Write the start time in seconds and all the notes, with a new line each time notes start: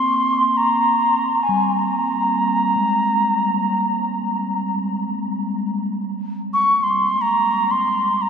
Already playing: A#3 C6
0.57 A#5
1.43 G#5
1.49 G3
1.79 A#5
2.76 G#3
6.54 C#6
6.83 C6
7.21 A#5
7.71 C6
8.18 A#5 C6